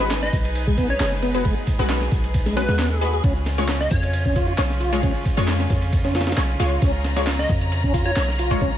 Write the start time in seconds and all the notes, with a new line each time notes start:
Already playing: G#1 G#3 D#4 G#4 B4
0.00 G#3 F#4 B4, snare, closed hi-hat
0.11 snare, clap, closed hi-hat, ride
0.23 D#5, snare
0.33 B1, kick, open hi-hat, ride
0.45 closed hi-hat, ride
0.55 closed hi-hat, ride
0.67 G#3, kick
0.77 B3, kick, open hi-hat, ride
0.89 C#4 C#5, closed hi-hat
1.00 F#1 G#4 C#5, snare, clap, closed hi-hat, ride
1.12 snare
1.22 B3, open hi-hat, ride
1.34 G#3 F#4 B4, closed hi-hat, ride
1.45 G#3, kick, closed hi-hat, ride
1.67 kick, open hi-hat, ride
1.79 B1 G#3 F#4 G#4 B4, snare, closed hi-hat
1.90 snare, clap, closed hi-hat, ride
2.01 snare
2.12 B1, kick, open hi-hat, ride
2.24 closed hi-hat, ride
2.34 kick, closed hi-hat, ride
2.46 G#3, snare
2.56 G#3 C#4 F#4 B4, snare, open hi-hat, ride
2.68 D#2 G#3, snare, closed hi-hat
2.79 B3, snare, clap, closed hi-hat, ride
3.01 G#3 F#4 G#4 B4, open hi-hat
3.13 G#4, closed hi-hat
3.24 C#2 C#3 C#4 F4, kick, closed hi-hat, ride
3.46 snare, open hi-hat, ride
3.58 G#3 F4 C#5, snare, closed hi-hat
3.68 snare, clap, closed hi-hat, ride
3.81 D#5, snare
3.91 F2 C#5, kick, open hi-hat, ride
4.03 closed hi-hat, ride
4.13 closed hi-hat, ride
4.25 C#4, kick
4.36 F4, kick, open hi-hat, ride
4.48 F4, closed hi-hat
4.58 B1 C#5, snare, clap, closed hi-hat, ride
4.70 snare
4.80 F4, open hi-hat, ride
4.92 G#3 F4 C#5, closed hi-hat, ride
5.03 C#4, kick, closed hi-hat, ride
5.25 kick, open hi-hat, ride
5.37 F2 G#3 F4 C#5, snare, closed hi-hat
5.48 snare, clap, closed hi-hat, ride
5.60 snare
5.70 F2, kick, open hi-hat, ride
5.82 closed hi-hat, ride
5.93 kick, closed hi-hat, ride
6.04 C#4, snare
6.15 F4, snare, open hi-hat, ride
6.21 snare, ride
6.27 F4, snare, closed hi-hat, ride
6.32 snare, ride
6.37 B1 C#5, snare, clap, closed hi-hat, ride
6.60 C#2 G#3 F4 C#5, open hi-hat
6.72 closed hi-hat
6.82 C#2 C#4 A#5, kick, closed hi-hat, ride
7.04 snare, open hi-hat, ride
7.16 G#3 F4 C#5, snare, closed hi-hat
7.27 snare, clap, closed hi-hat, ride
7.39 D#5, snare
7.49 F2, kick, open hi-hat, ride
7.61 closed hi-hat, ride
7.72 closed hi-hat, ride
7.83 C#4, kick
7.94 F4, kick, open hi-hat, ride
8.06 F4 C#5, closed hi-hat
8.16 B1 C#5, snare, clap, closed hi-hat, ride
8.28 snare
8.39 F4, open hi-hat, ride
8.51 G#3 F4 C#5, kick, closed hi-hat
8.61 C#4, kick, closed hi-hat, ride